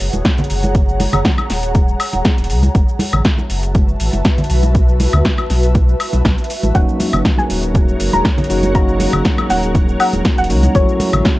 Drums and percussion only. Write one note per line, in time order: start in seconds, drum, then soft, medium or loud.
0.00 open hi-hat loud
0.00 shaker medium
0.13 closed hi-hat medium
0.13 high conga medium
0.13 shaker soft
0.25 kick loud
0.25 snare loud
0.25 closed hi-hat medium
0.25 shaker soft
0.38 closed hi-hat soft
0.38 low conga medium
0.38 shaker soft
0.44 closed hi-hat medium
0.50 open hi-hat medium
0.50 shaker medium
0.63 closed hi-hat medium
0.63 high conga medium
0.63 shaker soft
0.75 kick loud
0.75 closed hi-hat medium
0.75 shaker soft
0.89 shaker soft
1.00 open hi-hat loud
1.00 high conga medium
1.00 shaker medium
1.13 closed hi-hat medium
1.13 low conga medium
1.13 high woodblock medium
1.13 shaker soft
1.25 kick loud
1.25 snare loud
1.25 closed hi-hat medium
1.25 shaker soft
1.38 high conga medium
1.38 high woodblock medium
1.38 shaker soft
1.50 snare soft
1.50 open hi-hat medium
1.50 shaker medium
1.63 closed hi-hat medium
1.63 shaker soft
1.75 kick loud
1.75 closed hi-hat medium
1.75 high conga medium
1.75 shaker soft
1.88 shaker soft
2.00 open hi-hat loud
2.00 high woodblock medium
2.00 shaker medium
2.13 closed hi-hat medium
2.13 high conga medium
2.13 shaker soft
2.25 kick loud
2.25 snare loud
2.25 closed hi-hat medium
2.25 shaker soft
2.38 closed hi-hat medium
2.38 shaker soft
2.44 closed hi-hat medium
2.50 open hi-hat medium
2.50 shaker medium
2.63 closed hi-hat soft
2.63 high conga medium
2.63 shaker soft
2.75 kick loud
2.75 closed hi-hat medium
2.75 shaker soft
2.89 shaker soft
2.99 open hi-hat loud
2.99 high conga medium
2.99 shaker medium
3.13 closed hi-hat soft
3.13 low conga medium
3.13 high woodblock medium
3.13 shaker soft
3.25 kick loud
3.25 snare loud
3.25 closed hi-hat medium
3.25 shaker soft
3.38 high conga medium
3.38 shaker soft
3.50 open hi-hat loud
3.50 shaker medium
3.63 closed hi-hat soft
3.63 shaker soft
3.75 kick loud
3.75 closed hi-hat medium
3.75 high conga medium
3.75 shaker soft
3.89 shaker soft
4.00 open hi-hat loud
4.00 shaker medium
4.13 closed hi-hat soft
4.13 high conga medium
4.13 shaker soft
4.25 kick loud
4.25 snare loud
4.25 closed hi-hat medium
4.25 shaker soft
4.38 closed hi-hat soft
4.38 low conga medium
4.38 shaker soft
4.44 closed hi-hat medium
4.50 open hi-hat medium
4.50 shaker medium
4.63 closed hi-hat medium
4.63 high conga medium
4.63 shaker soft
4.75 kick loud
4.75 closed hi-hat medium
4.75 shaker soft
4.89 shaker soft
5.00 open hi-hat loud
5.00 high conga medium
5.00 shaker medium
5.13 closed hi-hat soft
5.13 low conga medium
5.13 high woodblock medium
5.13 shaker soft
5.25 kick loud
5.25 snare loud
5.25 closed hi-hat medium
5.25 shaker soft
5.38 high conga medium
5.38 high woodblock medium
5.38 shaker soft
5.50 snare soft
5.50 open hi-hat loud
5.50 shaker medium
5.63 closed hi-hat soft
5.63 shaker soft
5.75 kick loud
5.75 closed hi-hat medium
5.75 high conga medium
5.75 shaker soft
5.89 shaker soft
6.00 open hi-hat loud
6.00 high woodblock medium
6.00 shaker medium
6.13 closed hi-hat soft
6.13 high conga medium
6.13 shaker soft
6.25 kick loud
6.25 snare loud
6.25 closed hi-hat medium
6.25 shaker soft
6.38 closed hi-hat soft
6.38 shaker soft
6.44 closed hi-hat medium
6.50 open hi-hat medium
6.50 shaker medium
6.63 closed hi-hat soft
6.63 high conga medium
6.63 shaker soft
6.75 kick loud
6.75 closed hi-hat medium
6.75 shaker soft
6.89 shaker soft
7.00 open hi-hat medium
7.00 high conga medium
7.00 shaker medium
7.13 closed hi-hat soft
7.13 low conga medium
7.13 high woodblock medium
7.13 shaker soft
7.25 kick loud
7.25 snare loud
7.25 closed hi-hat medium
7.25 shaker soft
7.38 high conga medium
7.38 shaker soft
7.50 open hi-hat loud
7.50 shaker medium
7.63 closed hi-hat soft
7.63 shaker soft
7.74 kick loud
7.74 closed hi-hat medium
7.74 high conga medium
7.74 shaker soft
7.89 shaker soft
8.00 open hi-hat loud
8.00 shaker medium
8.13 closed hi-hat soft
8.13 high conga medium
8.13 shaker soft
8.25 kick loud
8.25 snare loud
8.25 closed hi-hat medium
8.25 shaker soft
8.38 closed hi-hat soft
8.38 low conga medium
8.38 shaker soft
8.44 closed hi-hat medium
8.50 open hi-hat medium
8.50 shaker medium
8.63 closed hi-hat soft
8.63 high conga medium
8.63 shaker soft
8.75 kick loud
8.75 closed hi-hat medium
8.75 shaker soft
8.89 shaker soft
9.00 open hi-hat loud
9.00 high conga medium
9.00 shaker medium
9.13 low conga medium
9.13 high woodblock medium
9.13 shaker soft
9.25 kick loud
9.25 snare loud
9.25 closed hi-hat medium
9.25 shaker soft
9.38 high conga medium
9.38 high woodblock medium
9.38 shaker soft
9.50 snare soft
9.50 open hi-hat medium
9.50 shaker medium
9.63 closed hi-hat medium
9.63 shaker soft
9.75 kick loud
9.75 closed hi-hat medium
9.75 high conga medium
9.75 shaker soft
9.89 shaker soft
10.00 open hi-hat loud
10.00 high woodblock medium
10.00 shaker medium
10.13 closed hi-hat medium
10.13 high conga medium
10.13 shaker soft
10.25 kick loud
10.25 snare loud
10.25 closed hi-hat medium
10.25 shaker soft
10.38 closed hi-hat soft
10.38 shaker soft
10.44 closed hi-hat medium
10.50 open hi-hat medium
10.50 shaker medium
10.63 closed hi-hat medium
10.63 high conga medium
10.63 shaker soft
10.75 kick loud
10.75 closed hi-hat medium
10.75 shaker soft
10.89 shaker soft
11.00 open hi-hat medium
11.00 high conga medium
11.00 shaker medium
11.13 closed hi-hat medium
11.13 low conga medium
11.13 high woodblock medium
11.13 shaker soft
11.25 kick loud
11.25 snare loud
11.25 closed hi-hat medium
11.25 shaker soft